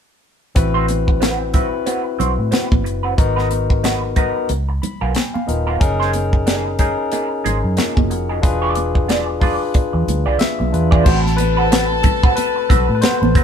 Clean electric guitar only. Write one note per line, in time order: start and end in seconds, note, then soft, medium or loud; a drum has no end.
0.56 muted clean electric guitar stroke soft
0.74 0.86 C4 medium
0.74 0.86 F#4 medium
0.74 0.85 C5 medium
0.88 muted clean electric guitar stroke soft
1.07 muted clean electric guitar stroke soft
1.20 1.43 C4 medium
1.20 1.40 F#4 medium
1.20 1.39 B4 medium
1.40 muted clean electric guitar stroke soft
1.54 1.66 C4 soft
1.54 1.66 F#4 medium
1.54 1.67 B4 medium
1.73 muted clean electric guitar stroke soft
1.86 2.02 C4 medium
1.86 2.02 F#4 medium
1.86 2.02 B4 medium
2.05 muted clean electric guitar stroke soft
2.19 2.31 C4 medium
2.19 2.31 F#4 medium
2.19 2.32 C5 medium
2.39 muted clean electric guitar stroke soft
2.51 2.67 C4 medium
2.51 2.67 F#4 medium
2.51 2.68 B4 medium
2.84 muted clean electric guitar stroke soft
3.03 3.13 C4 soft
3.03 3.13 F#4 soft
3.03 3.12 B4 soft
3.17 muted clean electric guitar stroke soft
3.36 3.48 D#4 medium
3.36 3.48 F#4 medium
3.36 3.48 B4 medium
3.51 muted clean electric guitar stroke soft
3.70 muted clean electric guitar stroke soft
3.84 3.99 D#4 medium
3.84 3.99 F#4 medium
3.84 3.99 B4 medium
4.02 muted clean electric guitar stroke soft
4.16 4.28 D#4 soft
4.16 4.28 F#4 medium
4.16 4.29 B4 medium
4.36 muted clean electric guitar stroke soft
4.50 muted clean electric guitar stroke soft
4.69 muted clean electric guitar stroke soft
5.01 5.13 B3 medium
5.01 5.12 F4 medium
5.01 5.12 A#4 medium
5.15 muted clean electric guitar stroke soft
5.34 muted clean electric guitar stroke soft
5.67 5.79 B3 medium
5.67 5.78 F4 medium
5.67 5.78 A#4 medium
6.00 6.11 D#4 medium
6.00 6.11 G#4 medium
6.00 6.11 C5 medium
6.33 muted clean electric guitar stroke soft
6.46 6.69 D#4 medium
6.46 6.65 G#4 medium
6.46 6.64 A#4 medium
6.65 muted clean electric guitar stroke soft
6.79 6.91 D#4 medium
6.79 6.91 G#4 medium
6.79 6.92 A#4 medium
6.98 muted clean electric guitar stroke soft
7.12 7.27 D#4 medium
7.12 7.28 G#4 medium
7.12 7.28 A#4 medium
7.31 muted clean electric guitar stroke soft
7.44 7.56 D#4 medium
7.44 7.57 G#4 medium
7.44 7.57 C5 medium
7.63 muted clean electric guitar stroke soft
7.77 7.92 D#4 medium
7.77 7.93 G#4 medium
7.77 7.93 A#4 medium
8.10 muted clean electric guitar stroke soft
8.29 8.39 D#4 soft
8.29 8.38 G#4 soft
8.29 8.38 A#4 soft
8.62 8.75 F4 medium
8.62 8.75 G#4 medium
8.62 8.76 D5 medium
8.76 muted clean electric guitar stroke soft
8.95 muted clean electric guitar stroke soft
9.08 9.24 F4 medium
9.08 9.24 G#4 medium
9.08 9.24 D5 medium
9.28 muted clean electric guitar stroke soft
9.41 9.53 F4 medium
9.41 9.54 G#4 medium
9.41 9.54 D5 medium
9.60 muted clean electric guitar stroke soft
9.74 muted clean electric guitar stroke soft
9.93 muted clean electric guitar stroke soft
10.26 10.38 F4 medium
10.26 10.37 G#4 medium
10.26 10.37 D5 medium
10.40 muted clean electric guitar stroke soft
10.59 muted clean electric guitar stroke soft
10.91 11.03 F4 soft
10.91 11.03 G#4 medium
10.91 11.02 D5 medium
11.05 11.21 C4 medium
11.05 11.21 F#4 medium
11.05 11.21 B4 medium
11.38 muted clean electric guitar stroke soft
11.57 11.67 C4 soft
11.57 11.66 F#4 soft
11.57 11.66 B4 soft
11.71 11.86 C4 medium
11.71 11.87 F#4 medium
11.71 11.87 B4 medium
12.04 muted clean electric guitar stroke soft
12.23 12.33 C4 medium
12.23 12.32 F#4 medium
12.23 12.32 B4 medium
12.56 muted clean electric guitar stroke soft
12.70 12.85 C4 medium
12.70 12.85 F#4 medium
12.70 12.85 B4 medium
12.89 muted clean electric guitar stroke soft
13.02 13.17 C4 medium
13.02 13.18 F#4 medium
13.02 13.18 B4 medium
13.22 muted clean electric guitar stroke soft
13.36 13.44 C4 medium
13.36 13.44 F#4 medium
13.36 13.44 B4 medium